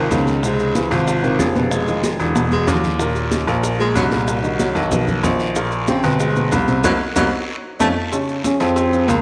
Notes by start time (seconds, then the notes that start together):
Already playing: D#3
0.11 C#2 C#3 D#3 D#4 F#4, high bongo, low bongo, high conga, short guiro, maracas
0.27 high conga, short guiro, maracas
0.43 C3 G#3 C4 C5, high bongo, high conga, long guiro, maracas
0.59 high bongo, high conga, maracas
0.75 E3 F3 F4 G#4, high bongo, high conga, short guiro, maracas
0.90 G#1 C3 F3 C4 C5, high conga, short guiro, maracas
1.07 high bongo, high conga, long guiro, maracas
1.23 C3 D#3 C4 C5, high bongo, high conga, maracas
1.39 F1 C#3 F3 F4 G#4, high bongo, low bongo, high conga, short guiro, maracas
1.55 B2 B3 B4, high conga, short guiro, maracas
1.71 G#3, high bongo, high conga, long guiro, maracas
1.88 D#3 D#4 F4, high bongo, high conga, maracas
2.04 high bongo, high conga, short guiro, maracas
2.20 E1 D3 D4 E4, short guiro, maracas
2.35 B2 B3 B4, high bongo, high conga, long guiro, maracas
2.52 G#3, high bongo, high conga, maracas
2.67 D#2 D3 F#3 D4 E4, high bongo, low bongo, low conga, short guiro, maracas
2.84 low conga, short guiro, maracas
2.99 A#2 A#3 A#4, high bongo, high conga, long guiro, maracas
3.15 high bongo, high conga, maracas
3.31 C#3 C#4 D#4, high bongo, high conga, short guiro, maracas
3.47 A#1 A#2 A#3 A#4, high conga, short guiro, maracas
3.63 high bongo, high conga, long guiro, maracas
3.79 A#2 G#3 A#3 A#4, high bongo, high conga, maracas
3.95 C2 C#3 F#3 C#4 D#4, high bongo, low bongo, high conga, short guiro, maracas
4.11 A#2 A#3 A#4, high conga, short guiro, maracas
4.27 high bongo, high conga, long guiro, maracas
4.43 D#3 D#4 F#4, high bongo, high conga, maracas
4.59 F#3, high bongo, high conga, short guiro, maracas
4.75 B1 D#3 D#4 F#4, short guiro, maracas
4.91 B2 D#3 B3 B4, high bongo, high conga, low conga, long guiro, maracas
5.08 high bongo, high conga, low conga, maracas
5.23 A#1 D#3 D#4 F#4, high bongo, low bongo, high conga, short guiro, maracas
5.39 short guiro, maracas
5.55 A#2 A#3 A#4, high bongo, high conga, long guiro, maracas
5.72 high bongo, high conga, maracas
5.87 C#3 C4 C#4 F4, high bongo, high conga, short guiro, maracas
6.03 G1 B2 B3 B4, high conga, short guiro, maracas
6.20 G#3, high bongo, high conga, long guiro, maracas
6.36 B2 B3 B4, high bongo, high conga, maracas
6.52 C2 D3 D4 F4, high bongo, low bongo, high conga, short guiro, maracas
6.68 C3 C4 C5, high conga, short guiro, maracas
6.84 C2 F#3 A#3 C4 D#4, low bongo, high conga, long guiro, maracas
7.16 C2 F#3 A#3 C4 D#4, low bongo, high conga, long guiro, maracas
7.79 F2 A3 C#4 D#4 F4, low bongo, high conga, long guiro, maracas
8.12 C#3 C#4 C#5, cowbell, high conga, long guiro, maracas
8.28 high conga, maracas
8.44 F3 C#4 F4 G#4, cowbell, high conga, short guiro, maracas
8.60 F2 F3 C4 F4 G#4, cowbell, high conga, short guiro, maracas
8.76 cowbell, high conga, long guiro, maracas
8.92 F3 F4 G#4, high conga, maracas
9.08 C#2 A#3, cowbell, high conga, short guiro, maracas